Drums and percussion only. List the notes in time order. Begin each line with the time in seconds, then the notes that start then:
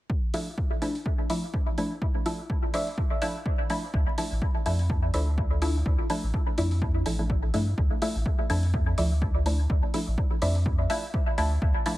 0.10 kick
0.34 open hi-hat
0.58 kick
0.82 open hi-hat
0.95 open hi-hat
1.06 kick
1.30 open hi-hat
1.54 kick
1.78 open hi-hat
2.02 kick
2.26 open hi-hat
2.50 kick
2.74 open hi-hat
2.87 open hi-hat
2.98 kick
3.22 open hi-hat
3.46 kick
3.70 open hi-hat
3.94 kick
4.18 open hi-hat
4.42 kick
4.66 open hi-hat
4.79 open hi-hat
4.90 kick
5.14 open hi-hat
5.38 kick
5.62 open hi-hat
5.86 kick
6.10 open hi-hat
6.34 kick
6.58 open hi-hat
6.71 open hi-hat
6.82 kick
7.06 open hi-hat
7.30 kick
7.54 open hi-hat
7.78 kick
8.02 open hi-hat
8.26 kick
8.50 open hi-hat
8.63 open hi-hat
8.74 kick
8.98 open hi-hat
9.22 kick
9.46 open hi-hat
9.70 kick
9.94 open hi-hat
10.18 kick
10.42 open hi-hat
10.55 open hi-hat
10.66 kick
10.90 open hi-hat
11.14 kick
11.38 open hi-hat
11.62 kick
11.86 open hi-hat